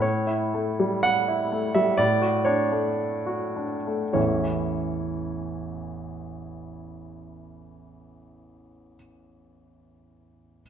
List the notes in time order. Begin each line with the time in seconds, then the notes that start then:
0.00 A2 C#5
0.27 E4
0.54 A3
0.80 G3
1.03 F#5
1.28 E4
1.52 A3
1.75 G3 E5
1.97 A2 D5
2.22 F#4
2.45 D4 C#5
2.72 A3
3.26 F#4
3.56 D4
3.87 A3
4.13 A1 E2 E3 A3 C#4 E4 C#5